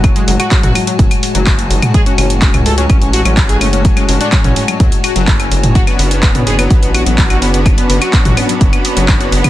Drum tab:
HH |xxoxxxoxxxoxxxox|xxoxxxoxxxoxxxox|xxoxxxoxxxoxxxox|xxoxxxoxxxoxxxox|
CL |x--x--x--x--x--x|--x--x--x--x--x-|-x--x--x--x--x--|-x--x--x--x--x--|
CP |----x-------x---|----x-------x---|----x-------x---|----x-------x---|
T2 |-----o---------o|-----o----------|-----o---------o|-----o----------|
BD |o---o---o---o---|o---o---o---o---|o---o---o---o---|o---o---o---o---|

HH |xxoxxxoxxxoxxxox|
CL |x--x--x--x--x--x|
CP |----x-------x---|
T2 |-----o---------o|
BD |o---o---o---o---|